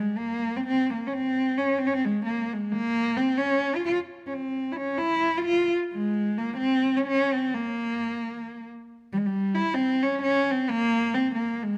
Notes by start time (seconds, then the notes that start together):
0.00 G#3
0.18 A#3
0.56 C4
0.67 C4
0.93 A#3
1.07 C#4
1.13 C4
1.57 C#4
1.78 C4
1.87 C#4
1.93 C4
2.05 G#3
2.25 A#3
2.53 G#3
2.72 A#3
3.17 C4
3.37 C#4
3.75 F4
3.85 F4
4.27 C#4
4.33 C4
4.72 E4
4.77 C#4
4.97 E4
5.37 F4
5.45 F4
5.93 G#3
6.38 A#3
6.57 C4
6.97 C#4
7.07 C#4
7.34 C4
7.54 A#3
9.13 G3
9.17 G#3
9.26 G3
9.55 E4
9.74 C4
10.03 C#4
10.22 C#4
10.51 C4
10.70 A#3
11.15 C4
11.35 A#3
11.63 G#3